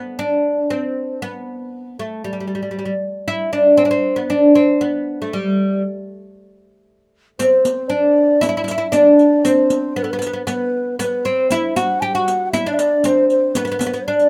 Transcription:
Already playing: B3
0.19 D4
0.70 C4
1.22 B3
1.99 A3
2.24 G3
2.33 G3
2.40 G3
2.47 G3
2.55 G3
2.63 G3
2.71 G3
2.79 G3
2.85 G3
3.28 E4
3.53 D4
3.77 C4
3.85 D4
3.91 C4
4.16 B3
4.30 D4
4.55 C4
4.81 B3
5.22 A3
5.33 G3
7.39 C4 C5, riq
7.65 riq
7.90 D4 D5
8.41 E4 E5, riq
8.49 E4
8.57 E4
8.64 E4
8.68 E4 E5, riq
8.78 E4
8.92 D4 D5, riq
9.19 riq
9.45 C4 C5, riq
9.70 riq
9.96 B3 B4
10.03 B3 A4
10.11 B3 B4
10.19 B3, riq
10.27 B3
10.33 B3
10.47 B3 B4, riq
10.99 B3 B4, riq
11.25 C4 C5, riq
11.50 E4 E5, riq
11.76 F#4 F#5, riq
12.01 G4 G5 A5
12.15 F#4 F#5
12.28 riq
12.52 E4 E5, riq
12.66 D4 D5
12.73 E5
12.79 D5, riq
13.04 C4 C5, riq
13.30 C5, riq
13.55 B3 B4, riq
13.65 B3, riq
13.72 B3
13.79 B3, riq
13.86 B3
13.93 B3, riq
14.07 D4 D5
14.19 riq

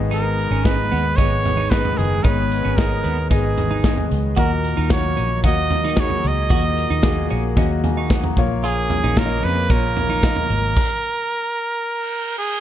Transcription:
Already playing: G#1 G#2 D#3 G#3 B3 G#4 D#5
0.11 D#4 A#4, closed hi-hat
0.39 closed hi-hat
0.51 G#1 C#4
0.64 B3 G#4 B4 D#5, kick, snare, closed hi-hat
0.92 D#2 B3, closed hi-hat
1.16 G#1 B3 G#4 C#5 D#5, kick, closed hi-hat
1.45 closed hi-hat, floor tom
1.57 D#4
1.70 B3 G#4 B4 D#5, kick, snare, closed hi-hat
1.85 floor tom
1.98 F#1 G#2 D#3 G#4, closed hi-hat
2.23 G#1 B3 D#4 G#4 B4 C#5, kick, closed hi-hat
2.52 closed hi-hat
2.65 G#1 C#4
2.77 B3 G#4 A#4 D#5, kick, snare, closed hi-hat
3.04 D#2 B3, closed hi-hat
3.30 G#1 B3 D#4 G#4 D#5, kick, closed hi-hat
3.58 closed hi-hat, floor tom
3.71 D#4
3.84 B3 G#4 D#5, kick, snare, closed hi-hat
3.98 floor tom
4.11 C#2, closed hi-hat
4.36 D#2 A#2 D#3 F#3 A#3 F#4 A#4 D#5, kick, closed hi-hat
4.64 closed hi-hat
4.77 D#2 D#4
4.90 A#3 F#4 C#5 F#5, kick, snare, closed hi-hat
5.17 A#1 C#4, closed hi-hat
5.44 D#2 A#3 C#4 F#4 D#5 F#5, kick, closed hi-hat
5.70 closed hi-hat, floor tom
5.84 D#4, snare
5.97 A#3 F#4 G#4 C#5, kick, snare, closed hi-hat
6.10 floor tom
6.24 C#2 D#5, closed hi-hat
6.50 D#2 A#2 A#3 F#4 D#5, kick, closed hi-hat
6.77 closed hi-hat
6.90 D#2 D#4
7.02 A#3 F#4 G#4, kick, snare, closed hi-hat
7.30 A#1 C#4, closed hi-hat
7.57 D#2 A#3 C#4 F#4 D#5, kick, closed hi-hat
7.84 G#5 A#5, closed hi-hat, floor tom
7.97 D#4 C#6
8.10 F#5 D#6, kick, snare, closed hi-hat
8.24 A#5, floor tom
8.37 A#1 C#3 F3 A#3 F4 C#5 F5, kick, closed hi-hat
8.64 F4 G#4, closed hi-hat
8.90 closed hi-hat, floor tom
9.04 A#1 D#4
9.17 A#3 F4 A#4 C#5, kick, snare, closed hi-hat
9.25 D#5
9.43 F2 C#4 B4, closed hi-hat
9.70 A#1 A#3 C#4 F4 A#4 C#5, kick, closed hi-hat
9.97 closed hi-hat, floor tom
10.10 D#4
10.23 A#3 F4 D#5, kick, snare, closed hi-hat
10.36 floor tom
10.50 G#1, closed hi-hat
10.77 kick, crash
11.83 reverse cymbal
12.38 G#4

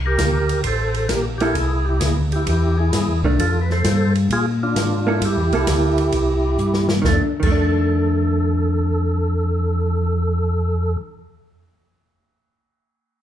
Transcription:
Already playing: C2
0.06 G4 A#4
0.18 D2, kick, snare, hi-hat pedal, ride
0.49 ride
0.64 A1 A4 C5, kick, ride
0.94 ride
1.08 A#1 G4 A#4, kick, snare, hi-hat pedal, ride
1.38 A#3 E4 G4, ride
1.43 A4
1.53 C2 G#4, kick, ride
1.57 E4
1.85 E4 G4
2.00 D2 E4 G#4, kick, snare, hi-hat pedal, ride
2.32 E4 G4, ride
2.46 E2 E4 G4, kick, ride
2.78 E4 G#4
2.92 G2, kick, snare, hi-hat pedal, ride
3.07 E2
3.22 C2 D#3 A3 D4, kick
3.38 F2 F4 A4, kick, ride
3.61 B4
3.70 A4 C5, snare
3.84 G2, kick, snare, hi-hat pedal, ride
4.15 ride
4.30 A#2 F4 G#4, kick, ride
4.63 D4 F4
4.76 G#2, kick, snare, hi-hat pedal, ride
5.07 A#3 E4 A4
5.21 G2 E4 G4, kick, ride
5.37 E2
5.52 C2 A#3 E4 A4, ride
5.67 D2, kick, snare, hi-hat pedal, ride
5.98 ride
6.12 C2, kick, ride
6.58 G2, hi-hat pedal
6.74 snare
6.89 snare
7.02 F2 D#3 A4, kick, snare
7.08 A3
7.13 D4
7.40 F2 D#3 A4, kick, crash
7.47 A3
7.52 D4

